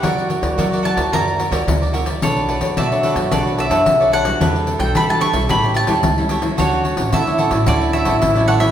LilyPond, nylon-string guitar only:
\new Staff \with { instrumentName = "Nylon-string guitar" } { \time 4/4 \key d \major \tempo 4 = 110 << { <e' ais' d''>8 r16 <e' ais' d''>8. <e' ais' d''>16 r16 <e' ais' d''>8 r16 <e' ais' d''>8. <e' ais' d''>8 | <d' a' cis''>8. <d' a' cis''>8 <d' a' cis''>8. <d' a' cis''>8. <d' a' cis''>8 <d' a' cis''>8 <g d' fis'>16~ | <g d' fis'>8. <g d' fis'>8 <g d' fis'>8 <g cis' e'>4 <g cis' e'>8 <g cis' e'>8 <fis cis' e'>16~ | <fis cis' e'>8. <fis cis' e'>8 <fis cis' e'>8 <fis cis' e'>16 <fis cis' e'>8. <fis cis' e'>8 <fis cis' e'>8 <fis cis' e'>16 | } \\ { fis4 fis4 fis4 fis4 | b4 fis4 b4 fis4 | e4 b,4 a,4 e4 | d4 a,4 d4 a,4 | } >> }